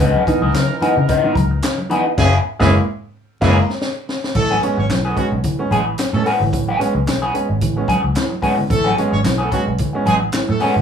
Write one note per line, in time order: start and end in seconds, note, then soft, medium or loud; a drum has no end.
0.00 0.13 C#2 loud
0.00 0.16 C#3 medium
0.00 0.22 E3 medium
0.00 1.87 E3 medium
0.00 0.23 B3 medium
0.00 1.86 D#4 medium
0.00 0.23 D#4 medium
0.00 0.23 G#4 loud
0.00 1.86 A#4 medium
0.00 kick loud
0.00 closed hi-hat medium
0.14 high conga medium
0.26 0.43 E3 medium
0.26 0.41 B3 medium
0.26 0.41 D#4 loud
0.26 kick loud
0.26 closed hi-hat medium
0.26 muted conga soft
0.41 0.53 C#2 medium
0.41 0.53 E3 medium
0.41 0.53 B3 medium
0.41 0.48 B3 soft
0.41 0.53 D#4 medium
0.41 0.48 D#4 soft
0.41 0.54 G#4 medium
0.41 high conga medium
0.53 0.67 C#3 medium
0.53 0.71 C#3 medium
0.53 muted clean electric guitar stroke soft
0.53 snare loud
0.53 clap medium
0.53 closed hi-hat medium
0.53 muted conga soft
0.53 high conga medium
0.80 0.99 E3 medium
0.80 0.98 E3 medium
0.80 0.97 B3 medium
0.80 0.95 B3 medium
0.80 0.96 D#4 medium
0.80 0.95 D#4 medium
0.80 0.96 G#4 medium
0.80 muted fingered electric bass stroke soft
0.80 closed hi-hat medium
0.80 muted conga soft
0.97 1.07 C#3 medium
0.97 1.02 B3 soft
0.97 1.02 D#4 soft
0.97 muted clean electric guitar stroke medium
1.08 1.25 C#3 medium
1.08 1.34 E3 medium
1.08 1.34 B3 medium
1.08 1.34 D#4 medium
1.08 1.35 A#4 medium
1.08 kick loud
1.08 closed hi-hat loud
1.08 low conga medium
1.24 1.37 E3 medium
1.24 1.35 B3 medium
1.24 1.35 D#4 medium
1.35 1.59 C#2 loud
1.35 1.42 B3 soft
1.35 1.42 D#4 soft
1.35 muted clean electric guitar stroke medium
1.35 kick medium
1.35 closed hi-hat medium
1.35 muted conga soft
1.35 high conga medium
1.51 muted clean electric guitar stroke soft
1.62 1.79 C#3 medium
1.62 snare loud
1.62 clap loud
1.62 closed hi-hat medium
1.62 muted conga soft
1.78 muted clean electric guitar stroke medium
1.78 high conga medium
1.89 2.06 E3 medium
1.89 2.12 E3 medium
1.89 2.04 B3 medium
1.89 2.06 B3 loud
1.89 2.04 D#4 medium
1.89 2.06 D#4 medium
1.89 2.05 G#4 loud
1.89 closed hi-hat medium
1.89 muted conga soft
2.05 2.10 B3 soft
2.05 2.10 D#4 soft
2.05 muted clean electric guitar stroke soft
2.17 2.37 F#1 loud
2.17 2.32 E3 medium
2.17 2.37 F#3 loud
2.17 2.37 A#3 loud
2.17 2.31 C#4 loud
2.17 2.37 E4 loud
2.17 2.31 G#4 loud
2.17 2.37 G#4 loud
2.17 kick loud
2.17 snare loud
2.17 crash loud
2.59 2.78 F#1 medium
2.59 2.73 E3 loud
2.59 2.79 F#3 loud
2.59 2.78 G#3 loud
2.59 2.78 A#3 loud
2.59 2.73 C#4 loud
2.59 2.78 E4 loud
2.59 2.78 G#4 loud
2.59 2.73 G#4 medium
2.59 kick loud
2.59 snare loud
3.41 3.60 F#1 loud
3.41 3.55 E3 loud
3.41 3.59 F#3 loud
3.41 3.59 G#3 loud
3.41 3.60 A#3 loud
3.41 3.55 C#4 loud
3.41 3.60 E4 loud
3.41 3.56 G#4 loud
3.41 3.60 A#4 loud
3.41 kick loud
3.41 snare loud
3.41 crash medium
3.70 snare medium
3.81 snare medium
4.09 snare medium
4.24 snare medium
4.35 4.58 A1 medium
4.35 4.51 A2 medium
4.35 4.51 E3 medium
4.35 4.57 A3 loud
4.35 4.57 A4 loud
4.35 muted clean electric guitar stroke soft
4.35 kick loud
4.35 crash loud
4.35 muted conga soft
4.35 low conga medium
4.50 4.61 E3 medium
4.50 4.62 B3 medium
4.50 4.62 C#4 medium
4.50 4.62 G#4 medium
4.50 high conga medium
4.62 4.78 G#3 medium
4.62 4.76 B3 medium
4.62 4.77 C#4 medium
4.62 muted clean electric guitar stroke soft
4.62 closed hi-hat medium
4.77 4.88 G#1 medium
4.77 4.83 B3 soft
4.77 4.85 C#4 medium
4.77 4.83 C#4 soft
4.77 4.85 C#5 medium
4.77 muted clean electric guitar stroke medium
4.77 high conga medium
4.89 5.13 B1 medium
4.89 5.06 A2 medium
4.89 5.06 E3 medium
4.89 muted clean electric guitar stroke soft
4.89 snare loud
4.89 clap medium
4.89 closed hi-hat medium
4.89 high conga medium
5.05 5.16 E3 medium
5.05 5.15 A3 medium
5.05 5.16 B3 medium
5.05 5.17 C#4 medium
5.05 5.17 G#4 medium
5.05 5.14 A4 medium
5.16 5.26 F#3 medium
5.16 5.33 G#3 medium
5.16 5.31 B3 medium
5.16 5.31 C#4 medium
5.16 5.26 F#4 medium
5.16 muted clean electric guitar stroke soft
5.16 kick medium
5.16 closed hi-hat medium
5.16 muted conga soft
5.32 5.42 B1 medium
5.32 5.37 B3 soft
5.32 5.37 C#4 soft
5.32 muted clean electric guitar stroke soft
5.44 5.60 A2 medium
5.44 5.60 E3 medium
5.44 muted clean electric guitar stroke soft
5.44 kick medium
5.44 closed hi-hat medium
5.44 muted conga soft
5.44 low conga medium
5.59 5.72 G#3 medium
5.59 5.70 B3 medium
5.59 5.70 C#4 medium
5.59 muted clean electric guitar stroke soft
5.70 5.94 A1 medium
5.70 5.93 E3 medium
5.70 5.80 G#3 medium
5.70 5.77 B3 soft
5.70 5.86 B3 medium
5.70 5.77 C#4 soft
5.70 5.85 C#4 medium
5.70 5.80 G#4 medium
5.70 5.85 G#4 medium
5.70 closed hi-hat medium
5.70 high conga medium
5.86 muted clean electric guitar stroke soft
5.98 muted clean electric guitar stroke soft
5.98 snare loud
5.98 clap medium
5.98 closed hi-hat medium
5.98 muted conga soft
6.13 6.24 A2 medium
6.13 6.26 G#3 medium
6.13 6.35 A3 medium
6.13 6.26 B3 medium
6.13 6.27 C#4 medium
6.13 6.35 A4 medium
6.13 muted clean electric guitar stroke soft
6.13 high conga medium
6.25 6.48 E3 medium
6.25 6.40 B3 medium
6.25 6.40 C#4 medium
6.25 6.40 G#4 loud
6.25 open hi-hat medium
6.40 6.53 G#1 loud
6.40 6.51 A2 medium
6.40 6.51 E3 medium
6.40 muted clean electric guitar stroke soft
6.40 low conga medium
6.52 6.76 A1 loud
6.52 6.69 A2 medium
6.52 6.69 E3 medium
6.52 muted clean electric guitar stroke soft
6.52 kick loud
6.52 closed hi-hat medium
6.52 muted conga soft
6.52 low conga medium
6.67 6.79 E3 medium
6.67 6.79 B3 medium
6.67 6.80 C#4 medium
6.67 6.80 G#4 medium
6.67 high conga medium
6.79 6.96 G#3 medium
6.79 6.93 B3 medium
6.79 6.93 C#4 medium
6.79 muted clean electric guitar stroke soft
6.79 closed hi-hat medium
6.79 muted conga soft
6.94 7.07 C#2 medium
6.94 7.00 B3 soft
6.94 7.00 C#4 soft
6.94 muted clean electric guitar stroke medium
6.94 high conga medium
7.06 7.30 B1 medium
7.06 7.23 A2 medium
7.06 7.23 E3 medium
7.06 muted clean electric guitar stroke soft
7.06 snare loud
7.06 clap medium
7.06 closed hi-hat medium
7.06 muted conga soft
7.06 high conga medium
7.22 7.33 E3 medium
7.22 7.33 B3 medium
7.22 7.34 C#4 medium
7.22 7.34 G#4 medium
7.34 7.50 G#3 medium
7.34 7.48 B3 medium
7.34 7.48 C#4 medium
7.34 muted clean electric guitar stroke soft
7.34 closed hi-hat medium
7.49 7.62 G#1 medium
7.49 7.54 B3 soft
7.49 7.54 C#4 soft
7.49 muted clean electric guitar stroke soft
7.61 7.85 A1 medium
7.61 7.78 A2 soft
7.61 7.78 E3 medium
7.61 kick medium
7.61 closed hi-hat loud
7.61 low conga medium
7.76 7.90 G#3 medium
7.76 7.87 B3 medium
7.76 7.88 C#4 medium
7.76 muted clean electric guitar stroke soft
7.88 8.10 E3 medium
7.88 8.03 B3 medium
7.88 7.95 B3 soft
7.88 8.02 C#4 medium
7.88 7.95 C#4 soft
7.88 8.01 G#4 loud
7.88 kick medium
7.88 closed hi-hat medium
7.88 muted conga soft
7.88 high conga medium
8.03 8.14 C#2 medium
8.03 muted clean electric guitar stroke soft
8.15 8.32 A2 medium
8.15 8.32 E3 medium
8.15 muted clean electric guitar stroke medium
8.15 snare loud
8.15 clap loud
8.15 closed hi-hat medium
8.30 muted clean electric guitar stroke soft
8.30 high conga medium
8.42 8.65 E3 medium
8.42 8.59 G#3 medium
8.42 8.57 B3 medium
8.42 8.57 C#4 medium
8.42 8.56 G#4 medium
8.42 kick medium
8.42 open hi-hat medium
8.42 muted conga soft
8.57 8.63 B3 soft
8.57 8.63 C#4 soft
8.57 muted clean electric guitar stroke soft
8.57 low conga medium
8.69 8.93 A1 loud
8.69 8.86 A2 medium
8.69 8.86 E3 medium
8.69 8.92 A3 loud
8.69 8.92 A4 loud
8.69 muted clean electric guitar stroke soft
8.69 kick loud
8.69 closed hi-hat medium
8.69 muted conga soft
8.69 low conga medium
8.84 8.95 E3 medium
8.84 8.96 B3 medium
8.84 8.96 C#4 medium
8.84 8.96 G#4 medium
8.84 high conga medium
8.96 9.13 G#3 medium
8.96 9.12 B3 medium
8.96 9.12 C#4 medium
8.96 muted clean electric guitar stroke soft
8.96 closed hi-hat medium
8.96 muted conga soft
9.11 9.23 G#1 medium
9.11 9.18 B3 soft
9.11 9.20 C#4 medium
9.11 9.18 C#4 soft
9.11 9.20 C#5 medium
9.11 muted clean electric guitar stroke soft
9.11 high conga medium
9.23 9.48 B1 medium
9.23 9.41 A2 medium
9.23 9.41 E3 medium
9.23 muted clean electric guitar stroke soft
9.23 snare loud
9.23 clap medium
9.23 closed hi-hat medium
9.23 high conga medium
9.38 9.49 E3 medium
9.38 9.49 A3 medium
9.38 9.50 B3 medium
9.38 9.50 C#4 medium
9.38 9.51 G#4 medium
9.38 9.49 A4 medium
9.51 9.61 F#3 medium
9.51 9.68 G#3 medium
9.51 9.66 B3 medium
9.51 9.66 C#4 medium
9.51 9.61 F#4 loud
9.51 muted clean electric guitar stroke soft
9.51 kick medium
9.51 closed hi-hat medium
9.51 muted conga soft
9.66 9.77 B1 medium
9.66 9.72 B3 soft
9.66 9.72 C#4 soft
9.66 muted clean electric guitar stroke soft
9.78 9.95 A2 medium
9.78 9.95 E3 medium
9.78 kick medium
9.78 closed hi-hat loud
9.78 muted conga soft
9.78 low conga medium
9.93 10.07 G#3 medium
9.93 10.05 B3 medium
9.93 10.05 C#4 medium
9.93 muted clean electric guitar stroke soft
10.05 10.30 A1 medium
10.05 10.28 E3 medium
10.05 10.15 G#3 medium
10.05 10.21 B3 medium
10.05 10.13 B3 soft
10.05 10.20 C#4 medium
10.05 10.12 C#4 soft
10.05 10.15 G#4 loud
10.05 10.20 G#4 medium
10.05 closed hi-hat medium
10.05 muted conga soft
10.05 high conga medium
10.21 muted clean electric guitar stroke medium
10.32 10.50 A2 medium
10.32 10.50 E3 medium
10.32 muted clean electric guitar stroke soft
10.32 snare loud
10.32 clap loud
10.32 closed hi-hat medium
10.32 muted conga soft
10.48 10.59 A2 loud
10.48 10.70 A3 medium
10.48 10.70 A4 loud
10.48 muted clean electric guitar stroke soft
10.48 high conga medium
10.60 10.82 E3 medium
10.60 10.77 G#3 medium
10.60 10.76 B3 medium
10.60 10.75 B3 medium
10.60 10.75 C#4 medium
10.60 10.75 G#4 loud
10.60 open hi-hat medium
10.60 muted conga soft
10.75 10.82 G#1 loud
10.75 10.81 B3 soft
10.75 10.81 C#4 soft
10.75 muted clean electric guitar stroke soft
10.75 low conga medium